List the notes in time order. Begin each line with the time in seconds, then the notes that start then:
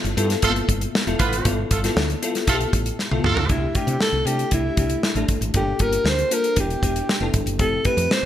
Already playing: B3 E4 F4 A4
0.04 G1, closed hi-hat
0.17 G2 B3 E4 F4 A4, closed hi-hat
0.30 snare, closed hi-hat
0.42 G1 A3 A#3 E4 F4 A4, kick, closed hi-hat
0.49 B3
0.56 closed hi-hat
0.68 G1, kick, closed hi-hat
0.81 closed hi-hat
0.95 snare
1.07 E1 B3 E4 F4 A4, closed hi-hat
1.19 A1 B3 F4 B4, kick, closed hi-hat
1.33 G#1, closed hi-hat
1.45 G1 B3 E4 F4 A4, kick, closed hi-hat
1.71 G1 A3 F4 A4, kick, closed hi-hat
1.84 B3 E4 F4 A4, snare, closed hi-hat
1.96 D2, snare
2.10 closed hi-hat
2.22 B3 E4 F4 A4, closed hi-hat
2.35 snare, closed hi-hat
2.47 B1 A3 B3 E4 F4 G4 A4, kick, closed hi-hat
2.55 A4
2.61 closed hi-hat
2.73 A1, kick, closed hi-hat
2.86 closed hi-hat
2.99 snare
3.11 B1 B3 E4 F4 A4, high tom
3.24 D2 A3 F4 A4, mid tom
3.36 C#2, floor tom
3.49 C2 A3 D4 E4 G4, kick, closed hi-hat
3.75 A3 D4 E4 G4, kick, closed hi-hat
3.87 C3, closed hi-hat
4.00 A4, snare
4.12 C2
4.25 C3 A3 D4 E4 G4 A4, closed hi-hat
4.39 closed hi-hat
4.51 C2 A3 D4 E4 G4, kick, closed hi-hat
4.77 C2 A3 D4 E4 G4, kick, closed hi-hat
4.90 closed hi-hat
5.03 snare
5.15 A1 A3 D4 E4 A4, closed hi-hat
5.28 A1, kick, closed hi-hat
5.41 G#1, closed hi-hat
5.54 G1 A#3 D4 F4 G4 A4, kick, closed hi-hat
5.79 G1 A#3 D4 F4 G4 A#4, kick, closed hi-hat
5.93 closed hi-hat
6.04 D2, snare
6.09 C5
6.19 closed hi-hat
6.31 A#3 D4 F4 A4 A#4, closed hi-hat
6.44 closed hi-hat
6.56 E1 B3 D4 E4 G4, kick, closed hi-hat
6.70 closed hi-hat
6.82 E1 B3 D4 E4 G4, kick, closed hi-hat
6.96 closed hi-hat
7.09 snare
7.20 F1 B3 D4 E4 A4
7.34 G1, kick, closed hi-hat
7.46 F#1, closed hi-hat
7.59 F1 A3 C4 E4 G4 A4, kick, closed hi-hat
7.84 A3 C4 E4 G4 B4, kick, closed hi-hat
7.97 F2, closed hi-hat
8.11 C5, snare